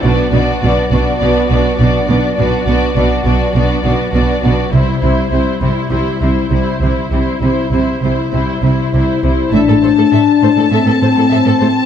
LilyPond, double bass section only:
\new Staff \with { instrumentName = "Double bass section" } { \clef bass \time 4/4 \key a \dorian \tempo 4 = 101 b,,8 b,,8 b,,8 b,,8 b,,8 b,,8 b,,8 b,,8 | b,,8 b,,8 b,,8 b,,8 b,,8 b,,8 b,,8 b,,8 | c,8 c,8 c,8 c,8 c,8 c,8 c,8 c,8 | c,8 c,8 c,8 c,8 c,8 c,8 c,8 c,8 |
a,,16 r2. r8. | }